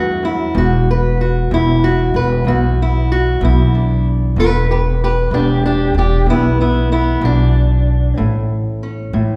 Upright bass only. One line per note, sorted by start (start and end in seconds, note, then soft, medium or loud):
0.00 0.51 E2 medium
0.55 1.46 E1 loud
1.51 2.11 E1 medium
2.14 2.44 E1 medium
2.45 3.37 B1 medium
3.41 4.33 B1 loud
4.36 5.28 E1 medium
5.31 5.92 E1 medium
5.95 6.25 E1 medium
6.26 7.18 B1 medium
7.21 8.14 B1 medium
8.18 9.10 A1 medium
9.13 9.36 A1 medium